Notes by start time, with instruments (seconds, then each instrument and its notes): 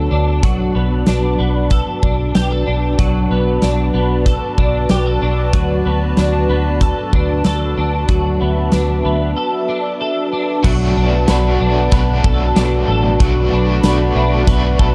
Already playing: clean electric guitar F#3 B3 D4 A4, analog synth pad F#4 B4 C#5 A5
0.11 fingered electric bass D2, clean electric guitar D4
0.43 fingered electric bass B1, clean electric guitar F#3, analog synth pad F#4 B4 D5 A5, kick, closed hi-hat
0.75 fingered electric bass B1, clean electric guitar B3
1.06 fingered electric bass B1, clean electric guitar D4, snare, closed hi-hat
1.39 fingered electric bass B1, clean electric guitar B3
1.70 clean electric guitar A4, kick, closed hi-hat
2.03 fingered electric bass B1, clean electric guitar D4, kick
2.35 fingered electric bass B1, clean electric guitar G4, snare, closed hi-hat
2.51 clean electric guitar A4
2.66 fingered electric bass B1, clean electric guitar D4
2.99 fingered electric bass B1, clean electric guitar F#3, kick, closed hi-hat
3.31 fingered electric bass B1, clean electric guitar B3
3.62 fingered electric bass B1, clean electric guitar D4, snare, closed hi-hat
3.94 fingered electric bass B1, clean electric guitar B3
4.26 clean electric guitar A4, kick, closed hi-hat
4.58 fingered electric bass B1, clean electric guitar D4, kick
4.89 fingered electric bass B1, clean electric guitar G4, snare, closed hi-hat
5.06 clean electric guitar A4
5.22 fingered electric bass B1, clean electric guitar D4
5.53 fingered electric bass D2, clean electric guitar F#3, kick, closed hi-hat
5.86 fingered electric bass D2, clean electric guitar B3
6.17 fingered electric bass D2, clean electric guitar D4, snare, closed hi-hat
6.49 fingered electric bass D2, clean electric guitar B3
6.81 clean electric guitar A4, kick, closed hi-hat
7.13 fingered electric bass D2, clean electric guitar D4, kick
7.44 fingered electric bass D2, clean electric guitar A4, snare, closed hi-hat
7.78 fingered electric bass D2, clean electric guitar D4
8.08 fingered electric bass D2, clean electric guitar F#3, analog synth pad E5, kick, closed hi-hat
8.41 fingered electric bass D2, clean electric guitar B3
8.72 fingered electric bass D2, clean electric guitar D4, snare, closed hi-hat
9.05 fingered electric bass D2, clean electric guitar B3
9.37 clean electric guitar A4
9.69 clean electric guitar D4
10.01 clean electric guitar A4
10.33 clean electric guitar D4
10.64 fingered electric bass B1, overdriven electric guitar B2 F#3 A3 D4 F#4, clean electric guitar F#3, analog synth pad F#4 B4 D5 A5, kick, crash
10.97 fingered electric bass B1, clean electric guitar D4, celesta D5
11.27 fingered electric bass B1, overdriven electric guitar F#3 A3 D4, clean electric guitar B3, snare, closed hi-hat, tambourine
11.33 overdriven electric guitar F#4
11.60 fingered electric bass B1, clean electric guitar D4
11.90 fingered electric bass B1, overdriven electric guitar B2 F#3, clean electric guitar B3, kick, closed hi-hat
11.94 overdriven electric guitar A3 D4 F#4
12.24 fingered electric bass B1, clean electric guitar A4, kick
12.56 fingered electric bass B1, clean electric guitar D4, snare, closed hi-hat, tambourine
12.88 fingered electric bass A1, clean electric guitar A4
13.19 fingered electric bass B1, overdriven electric guitar B2 F#3 A3 D4 F#4, clean electric guitar F#3, analog synth pad B5, kick, closed hi-hat
13.51 fingered electric bass B1, clean electric guitar D4, overdriven electric guitar D4 F#4
13.55 overdriven electric guitar A3
13.83 fingered electric bass B1, overdriven electric guitar F#3 A3 D4, clean electric guitar B3, snare, closed hi-hat, tambourine
13.88 overdriven electric guitar F#4
14.15 fingered electric bass B1, clean electric guitar D4, celesta E5
14.45 fingered electric bass B1, overdriven electric guitar B2 F#3, clean electric guitar B3, kick, closed hi-hat
14.50 overdriven electric guitar A3 D4 F#4
14.79 fingered electric bass B1, clean electric guitar A4, kick